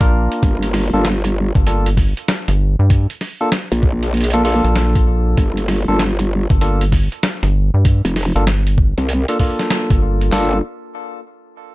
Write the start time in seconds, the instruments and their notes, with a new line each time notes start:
0.01 analog synth bass A#1, tine electric piano A#3 D4 F4 A#4, kick, closed hi-hat
0.32 closed hi-hat
0.43 wobble bass G1, kick, closed hi-hat
0.63 closed hi-hat
0.74 snare, open hi-hat
0.93 wobble bass G1, tine electric piano A#3 D4 F4 A4
1.05 snare, closed hi-hat
1.25 closed hi-hat
1.55 analog synth bass G1, kick, closed hi-hat
1.67 tine electric piano A#3 D4 F4 A4, closed hi-hat
1.86 closed hi-hat
1.97 kick, snare, open hi-hat
2.17 closed hi-hat
2.28 snare, closed hi-hat
2.48 analog synth bass G1, snare, closed hi-hat
2.79 analog synth bass G2
2.90 kick, closed hi-hat
3.10 closed hi-hat
3.21 snare, open hi-hat
3.41 tine electric piano A#3 D4 F4 A4
3.52 snare, closed hi-hat
3.72 wobble bass A#1, closed hi-hat
3.83 kick
4.03 closed hi-hat
4.14 closed hi-hat
4.17 closed hi-hat
4.21 closed hi-hat
4.24 closed hi-hat
4.30 closed hi-hat
4.34 tine electric piano A#3 D4 F4 A4, closed hi-hat
4.45 tine electric piano A#3 D4 F4 A4, open hi-hat
4.64 analog synth bass A#1, closed hi-hat
4.76 snare, closed hi-hat
4.95 kick, closed hi-hat
5.37 wobble bass G1, kick, closed hi-hat
5.57 closed hi-hat
5.68 snare, open hi-hat
5.88 wobble bass G1, tine electric piano A#3 D4 F4 A4
5.99 snare, closed hi-hat
6.19 closed hi-hat
6.50 analog synth bass G1, kick, closed hi-hat
6.61 tine electric piano A#3 D4 F4 A4, closed hi-hat
6.81 closed hi-hat
6.92 kick, snare, open hi-hat
7.12 closed hi-hat
7.23 snare, closed hi-hat
7.43 analog synth bass G1, snare, closed hi-hat
7.74 analog synth bass G2
7.85 kick, closed hi-hat
8.05 wobble bass F1, closed hi-hat
8.16 snare, open hi-hat
8.36 analog synth bass G1, tine electric piano A#3 D4 F4 A4, closed hi-hat
8.47 snare, closed hi-hat
8.67 closed hi-hat
8.78 kick
8.98 wobble bass C2, closed hi-hat
9.09 closed hi-hat
9.28 tine electric piano A#3 D4 F4 A4, closed hi-hat
9.39 tine electric piano A#3 D4 F4 A4, kick, open hi-hat
9.59 snare, closed hi-hat
9.70 snare, closed hi-hat
9.90 analog synth bass G1, kick, closed hi-hat
10.21 closed hi-hat
10.32 wobble bass G1, tine electric piano A#3 D4 F4 A4, snare, clap